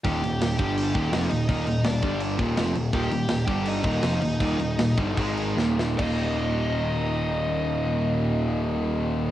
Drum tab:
CC |xxxxxxxx|xxxxxxxx|xxxxxxxx|xxxxxx--|
SD |--o---o-|--o---o-|--o---o-|--o---oo|
BD |o--o-o--|o--o-o--|o--o-o--|o--oo---|

CC |x-------|--------|
SD |--------|--------|
BD |o-------|--------|